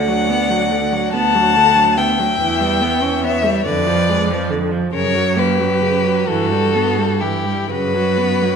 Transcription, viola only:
0, 0, Header, 1, 2, 480
1, 0, Start_track
1, 0, Key_signature, 2, "minor"
1, 0, Tempo, 842697
1, 1367, Time_signature, 6, 3, 24, 8
1, 2815, Tempo, 903614
1, 3775, Tempo, 958466
1, 4681, End_track
2, 0, Start_track
2, 0, Title_t, "Viola"
2, 0, Program_c, 0, 41
2, 46, Note_on_c, 0, 54, 51
2, 169, Note_on_c, 0, 59, 55
2, 177, Note_off_c, 0, 54, 0
2, 287, Note_on_c, 0, 54, 49
2, 295, Note_off_c, 0, 59, 0
2, 406, Note_on_c, 0, 50, 52
2, 415, Note_off_c, 0, 54, 0
2, 527, Note_on_c, 0, 54, 60
2, 536, Note_off_c, 0, 50, 0
2, 648, Note_on_c, 0, 59, 60
2, 657, Note_off_c, 0, 54, 0
2, 771, Note_on_c, 0, 54, 57
2, 779, Note_off_c, 0, 59, 0
2, 889, Note_on_c, 0, 50, 62
2, 898, Note_off_c, 0, 54, 0
2, 1005, Note_on_c, 0, 54, 53
2, 1013, Note_off_c, 0, 50, 0
2, 1123, Note_on_c, 0, 59, 56
2, 1132, Note_off_c, 0, 54, 0
2, 1252, Note_on_c, 0, 54, 50
2, 1261, Note_off_c, 0, 59, 0
2, 1366, Note_off_c, 0, 54, 0
2, 1369, Note_on_c, 0, 52, 59
2, 1485, Note_on_c, 0, 55, 57
2, 1493, Note_off_c, 0, 52, 0
2, 1606, Note_on_c, 0, 59, 58
2, 1614, Note_off_c, 0, 55, 0
2, 1724, Note_on_c, 0, 61, 53
2, 1733, Note_off_c, 0, 59, 0
2, 1845, Note_on_c, 0, 59, 54
2, 1853, Note_off_c, 0, 61, 0
2, 1961, Note_on_c, 0, 55, 60
2, 1969, Note_off_c, 0, 59, 0
2, 2083, Note_off_c, 0, 55, 0
2, 2086, Note_on_c, 0, 50, 57
2, 2203, Note_on_c, 0, 53, 54
2, 2212, Note_off_c, 0, 50, 0
2, 2330, Note_on_c, 0, 56, 60
2, 2338, Note_off_c, 0, 53, 0
2, 2449, Note_on_c, 0, 53, 55
2, 2457, Note_off_c, 0, 56, 0
2, 2565, Note_on_c, 0, 50, 55
2, 2573, Note_off_c, 0, 53, 0
2, 2686, Note_on_c, 0, 53, 50
2, 2694, Note_off_c, 0, 50, 0
2, 2804, Note_off_c, 0, 53, 0
2, 2808, Note_on_c, 0, 49, 61
2, 2923, Note_on_c, 0, 54, 54
2, 2931, Note_off_c, 0, 49, 0
2, 3039, Note_on_c, 0, 58, 58
2, 3047, Note_off_c, 0, 54, 0
2, 3160, Note_on_c, 0, 54, 51
2, 3167, Note_off_c, 0, 58, 0
2, 3279, Note_on_c, 0, 49, 48
2, 3287, Note_off_c, 0, 54, 0
2, 3403, Note_on_c, 0, 54, 53
2, 3411, Note_off_c, 0, 49, 0
2, 3525, Note_off_c, 0, 54, 0
2, 3529, Note_on_c, 0, 52, 59
2, 3650, Note_on_c, 0, 55, 52
2, 3658, Note_off_c, 0, 52, 0
2, 3777, Note_on_c, 0, 59, 59
2, 3784, Note_off_c, 0, 55, 0
2, 3892, Note_on_c, 0, 55, 49
2, 3899, Note_off_c, 0, 59, 0
2, 4010, Note_on_c, 0, 52, 50
2, 4018, Note_off_c, 0, 55, 0
2, 4127, Note_on_c, 0, 55, 45
2, 4134, Note_off_c, 0, 52, 0
2, 4247, Note_off_c, 0, 55, 0
2, 4250, Note_on_c, 0, 49, 54
2, 4374, Note_on_c, 0, 54, 51
2, 4381, Note_off_c, 0, 49, 0
2, 4490, Note_on_c, 0, 59, 53
2, 4497, Note_off_c, 0, 54, 0
2, 4612, Note_on_c, 0, 54, 45
2, 4620, Note_off_c, 0, 59, 0
2, 4681, Note_off_c, 0, 54, 0
2, 4681, End_track
0, 0, End_of_file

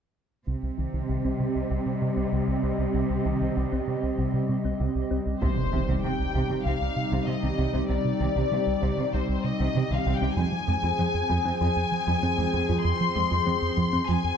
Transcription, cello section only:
0, 0, Header, 1, 2, 480
1, 0, Start_track
1, 0, Key_signature, -3, "minor"
1, 0, Tempo, 618557
1, 365, Time_signature, 4, 2, 24, 8
1, 11152, End_track
2, 0, Start_track
2, 0, Title_t, "Cello section"
2, 0, Program_c, 0, 48
2, 367, Note_on_c, 0, 48, 27
2, 4019, Note_off_c, 0, 48, 0
2, 4207, Note_on_c, 0, 48, 35
2, 4255, Note_off_c, 0, 48, 0
2, 4445, Note_on_c, 0, 48, 28
2, 4493, Note_off_c, 0, 48, 0
2, 4569, Note_on_c, 0, 48, 36
2, 4616, Note_off_c, 0, 48, 0
2, 4692, Note_on_c, 0, 48, 22
2, 4739, Note_off_c, 0, 48, 0
2, 4930, Note_on_c, 0, 48, 34
2, 4977, Note_off_c, 0, 48, 0
2, 5048, Note_on_c, 0, 48, 27
2, 5095, Note_off_c, 0, 48, 0
2, 5168, Note_on_c, 0, 48, 40
2, 5216, Note_off_c, 0, 48, 0
2, 5528, Note_on_c, 0, 48, 38
2, 5575, Note_off_c, 0, 48, 0
2, 5648, Note_on_c, 0, 48, 27
2, 5695, Note_off_c, 0, 48, 0
2, 5766, Note_on_c, 0, 48, 26
2, 5813, Note_off_c, 0, 48, 0
2, 5887, Note_on_c, 0, 48, 39
2, 5934, Note_off_c, 0, 48, 0
2, 6009, Note_on_c, 0, 48, 27
2, 6056, Note_off_c, 0, 48, 0
2, 6123, Note_on_c, 0, 48, 38
2, 6171, Note_off_c, 0, 48, 0
2, 6366, Note_on_c, 0, 48, 29
2, 6413, Note_off_c, 0, 48, 0
2, 6488, Note_on_c, 0, 48, 35
2, 6535, Note_off_c, 0, 48, 0
2, 6608, Note_on_c, 0, 48, 26
2, 6656, Note_off_c, 0, 48, 0
2, 6847, Note_on_c, 0, 48, 38
2, 6895, Note_off_c, 0, 48, 0
2, 6969, Note_on_c, 0, 48, 30
2, 7016, Note_off_c, 0, 48, 0
2, 7089, Note_on_c, 0, 48, 46
2, 7136, Note_off_c, 0, 48, 0
2, 7451, Note_on_c, 0, 48, 39
2, 7498, Note_off_c, 0, 48, 0
2, 7571, Note_on_c, 0, 48, 32
2, 7617, Note_off_c, 0, 48, 0
2, 7686, Note_on_c, 0, 48, 28
2, 7734, Note_off_c, 0, 48, 0
2, 7806, Note_on_c, 0, 48, 45
2, 7853, Note_off_c, 0, 48, 0
2, 7926, Note_on_c, 0, 48, 29
2, 7974, Note_off_c, 0, 48, 0
2, 8046, Note_on_c, 0, 41, 44
2, 8094, Note_off_c, 0, 41, 0
2, 8286, Note_on_c, 0, 41, 29
2, 8334, Note_off_c, 0, 41, 0
2, 8406, Note_on_c, 0, 41, 38
2, 8454, Note_off_c, 0, 41, 0
2, 8527, Note_on_c, 0, 41, 29
2, 8575, Note_off_c, 0, 41, 0
2, 8765, Note_on_c, 0, 41, 44
2, 8813, Note_off_c, 0, 41, 0
2, 8887, Note_on_c, 0, 41, 34
2, 8935, Note_off_c, 0, 41, 0
2, 9004, Note_on_c, 0, 41, 53
2, 9052, Note_off_c, 0, 41, 0
2, 9367, Note_on_c, 0, 41, 42
2, 9414, Note_off_c, 0, 41, 0
2, 9484, Note_on_c, 0, 41, 38
2, 9532, Note_off_c, 0, 41, 0
2, 9607, Note_on_c, 0, 41, 35
2, 9654, Note_off_c, 0, 41, 0
2, 9727, Note_on_c, 0, 41, 49
2, 9775, Note_off_c, 0, 41, 0
2, 9849, Note_on_c, 0, 41, 31
2, 9896, Note_off_c, 0, 41, 0
2, 9964, Note_on_c, 0, 41, 51
2, 10012, Note_off_c, 0, 41, 0
2, 10208, Note_on_c, 0, 41, 37
2, 10255, Note_off_c, 0, 41, 0
2, 10325, Note_on_c, 0, 41, 45
2, 10373, Note_off_c, 0, 41, 0
2, 10446, Note_on_c, 0, 41, 37
2, 10493, Note_off_c, 0, 41, 0
2, 10686, Note_on_c, 0, 41, 45
2, 10733, Note_off_c, 0, 41, 0
2, 10803, Note_on_c, 0, 41, 38
2, 10852, Note_off_c, 0, 41, 0
2, 10928, Note_on_c, 0, 41, 54
2, 10976, Note_off_c, 0, 41, 0
2, 11152, End_track
0, 0, End_of_file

